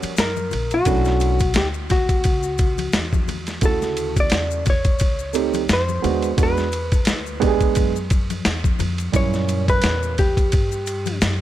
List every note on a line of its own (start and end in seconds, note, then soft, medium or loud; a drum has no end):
0.00 0.11 G3 medium
0.00 0.11 A#3 medium
0.00 0.11 C#4 medium
0.00 0.12 F#4 medium
0.00 muted upright bass stroke soft
0.00 ride soft
0.00 high conga medium
0.00 maracas soft
0.17 0.51 F#2 medium
0.17 0.75 A#4 medium
0.17 snare loud
0.17 hi-hat pedal medium
0.17 ride medium
0.17 maracas medium
0.37 high conga medium
0.37 maracas soft
0.51 0.86 A#1 medium
0.51 ride medium
0.51 high conga soft
0.51 low conga medium
0.51 maracas soft
0.71 1.53 F#4 medium
0.71 ride soft
0.71 maracas soft
0.85 1.52 B1 loud
0.85 1.37 A3 medium
0.85 1.37 C#4 medium
0.85 1.37 D4 medium
0.85 1.37 E4 medium
0.85 kick medium
0.85 ride medium
0.85 maracas medium
1.05 snare soft
1.05 maracas soft
1.20 ride medium
1.20 maracas medium
1.40 kick medium
1.40 ride soft
1.40 maracas medium
1.54 2.21 D2 loud
1.54 1.66 G4 medium
1.54 snare loud
1.54 hi-hat pedal medium
1.54 ride medium
1.54 low conga medium
1.54 maracas medium
1.74 maracas soft
1.90 3.25 F#4 medium
1.90 kick medium
1.90 snare soft
1.90 ride medium
1.90 low conga medium
1.90 maracas soft
2.09 kick medium
2.09 ride soft
2.09 maracas soft
2.24 2.91 C#2 medium
2.24 kick medium
2.24 ride medium
2.24 maracas medium
2.43 maracas medium
2.58 kick medium
2.58 ride medium
2.58 maracas soft
2.78 ride soft
2.78 high conga medium
2.78 maracas soft
2.93 3.59 E2 medium
2.93 snare loud
2.93 hi-hat pedal medium
2.93 ride medium
2.93 maracas medium
3.13 kick medium
3.13 high conga medium
3.13 maracas soft
3.28 ride soft
3.28 high conga soft
3.28 low conga medium
3.28 maracas soft
3.47 snare soft
3.47 ride soft
3.47 maracas soft
3.61 4.28 D2 loud
3.61 4.60 C#3 medium
3.61 4.60 A3 medium
3.61 4.60 E4 medium
3.61 4.60 F#4 medium
3.61 kick loud
3.61 ride medium
3.61 maracas medium
3.65 4.15 A4 medium
3.82 snare soft
3.82 maracas soft
3.97 ride medium
3.97 maracas soft
4.17 4.64 D5 loud
4.17 kick medium
4.17 ride soft
4.17 maracas soft
4.30 5.02 E2 loud
4.30 snare loud
4.30 hi-hat pedal medium
4.30 ride medium
4.30 maracas medium
4.51 maracas soft
4.66 kick medium
4.66 ride medium
4.66 low conga medium
4.66 maracas soft
4.70 5.73 C#5 medium
4.85 kick medium
4.85 ride soft
4.85 maracas soft
4.99 5.67 C#2 loud
4.99 kick medium
4.99 ride medium
4.99 maracas medium
5.19 maracas soft
5.33 5.60 A3 medium
5.33 5.60 C4 medium
5.33 5.61 D#4 medium
5.33 5.61 G4 medium
5.33 ride medium
5.33 maracas medium
5.54 ride soft
5.54 high conga medium
5.54 maracas soft
5.69 6.02 F2 loud
5.69 snare loud
5.69 hi-hat pedal medium
5.69 ride medium
5.69 maracas medium
5.73 6.36 C5 medium
5.89 high conga medium
5.89 maracas soft
6.02 6.37 D#2 medium
6.02 6.29 G#3 medium
6.02 6.29 B3 medium
6.02 6.29 D4 medium
6.02 6.29 F#4 medium
6.02 ride soft
6.02 high conga soft
6.02 low conga medium
6.02 maracas soft
6.22 ride soft
6.22 maracas soft
6.37 7.04 E2 loud
6.37 6.63 G#3 medium
6.37 6.64 B3 medium
6.37 6.64 D4 medium
6.37 6.64 F#4 medium
6.37 kick medium
6.37 ride medium
6.37 maracas medium
6.43 8.44 B4 medium
6.57 snare soft
6.57 maracas soft
6.72 ride medium
6.72 maracas medium
6.92 kick medium
6.92 ride soft
6.92 maracas soft
7.05 7.73 D2 medium
7.05 snare loud
7.05 hi-hat pedal medium
7.05 ride medium
7.05 maracas medium
7.26 maracas soft
7.40 7.91 G#3 medium
7.40 7.91 B3 medium
7.40 7.92 D4 medium
7.40 7.49 G4 medium
7.40 kick medium
7.40 ride medium
7.40 low conga medium
7.40 maracas soft
7.47 7.95 G#4 loud
7.61 kick medium
7.61 ride soft
7.61 maracas soft
7.75 8.42 F#2 medium
7.75 kick medium
7.75 ride medium
7.75 maracas medium
7.96 maracas medium
8.10 kick loud
8.10 ride medium
8.10 maracas soft
8.30 ride soft
8.30 high conga medium
8.30 maracas soft
8.45 8.78 E2 medium
8.45 snare loud
8.45 hi-hat pedal medium
8.45 ride medium
8.45 maracas medium
8.64 kick medium
8.64 high conga medium
8.64 maracas soft
8.79 9.12 F2 medium
8.79 ride medium
8.79 high conga soft
8.79 low conga medium
8.79 maracas soft
8.98 ride soft
8.98 maracas soft
9.12 9.80 F#2 loud
9.12 10.11 A#2 medium
9.12 10.11 G3 medium
9.12 10.11 C#4 medium
9.12 10.12 E4 medium
9.12 kick loud
9.12 ride medium
9.12 maracas medium
9.16 9.69 C#5 loud
9.33 snare soft
9.33 maracas soft
9.49 ride medium
9.49 maracas medium
9.68 10.20 B4 loud
9.68 kick medium
9.68 ride soft
9.68 maracas soft
9.82 10.49 E2 medium
9.82 snare loud
9.82 hi-hat pedal medium
9.82 ride medium
9.82 maracas medium
10.03 maracas soft
10.18 11.18 G4 medium
10.18 kick medium
10.18 ride medium
10.18 low conga medium
10.18 maracas soft
10.37 kick medium
10.37 ride soft
10.37 maracas soft
10.52 11.18 G2 loud
10.52 kick loud
10.52 ride medium
10.52 maracas soft
10.72 maracas medium
10.87 ride medium
10.87 maracas soft
11.06 ride soft
11.06 high conga medium
11.06 maracas soft
11.22 11.41 F#2 medium
11.22 snare loud
11.22 hi-hat pedal medium
11.22 ride medium
11.22 maracas medium